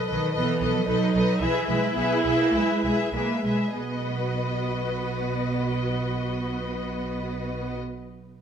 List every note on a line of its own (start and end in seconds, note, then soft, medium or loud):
0.07 0.18 B1 soft
0.07 0.34 D#3 medium
0.07 0.33 A4 soft
0.07 0.33 B4 soft
0.07 0.32 D#5 soft
0.33 0.43 B1 soft
0.33 0.74 E3 medium
0.33 0.83 B3 medium
0.33 0.60 A4 soft
0.33 0.60 B4 soft
0.33 0.59 D#5 soft
0.61 0.70 B1 soft
0.61 0.85 A4 soft
0.61 0.84 B4 soft
0.61 0.86 D#5 soft
0.74 0.87 F#3 medium
0.86 0.96 B1 soft
0.86 1.39 F#3 medium
0.86 1.39 D#4 medium
0.86 1.12 A4 soft
0.86 1.12 B4 soft
0.86 1.13 D#5 soft
1.14 1.22 B1 soft
1.14 1.40 A4 soft
1.14 1.39 B4 soft
1.14 1.40 D#5 soft
1.40 1.48 B1 medium
1.40 1.67 E3 medium
1.40 3.13 E4 medium
1.40 1.67 G#4 soft
1.40 1.67 B4 soft
1.40 1.66 E5 soft
1.67 1.76 B1 soft
1.67 1.95 G#3 medium
1.67 1.95 G#4 soft
1.67 1.95 B4 soft
1.67 1.94 E5 soft
1.95 2.04 B1 soft
1.95 2.37 B3 medium
1.95 2.23 G#4 soft
1.95 2.23 B4 soft
1.95 2.23 E5 soft
2.24 2.32 B1 soft
2.24 2.52 G#4 soft
2.24 2.52 B4 soft
2.24 2.52 E5 soft
2.38 2.52 A#3 medium
2.53 2.61 B1 soft
2.53 2.82 G#3 medium
2.53 2.82 G#4 soft
2.53 2.82 B4 soft
2.53 2.82 E5 soft
2.83 2.91 B1 soft
2.83 2.92 G#3 soft
2.83 3.13 G#4 soft
2.83 3.13 B4 soft
2.83 3.12 E5 soft
3.12 3.20 B1 soft
3.12 3.44 G#3 soft
3.12 3.43 A#3 medium
3.12 3.43 G#4 soft
3.12 3.44 B4 soft
3.12 3.44 E5 soft
3.44 3.52 B1 soft
3.44 3.75 G#3 soft
3.44 3.75 G#4 soft
3.44 3.75 B4 soft
3.44 3.76 E5 soft
3.75 7.74 B1 soft
3.75 7.74 B3 soft
3.75 7.75 F#4 soft
3.75 7.74 B4 soft
3.75 7.77 D#5 soft